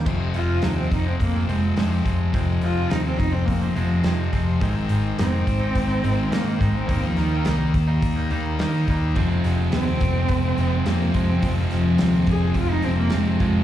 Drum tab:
CC |x-------|--------|--------|--------|
HH |-ooooooo|oooooooo|oooooooo|oooooooo|
SD |--o---o-|--o---o-|--o---o-|-oo---o-|
BD |o--oo--o|o--oo--o|o--oo--o|o--oo--o|

CC |--------|--------|
HH |oooooooo|oooooooo|
SD |-oo---o-|-oo---o-|
BD |o--oo--o|o--oo--o|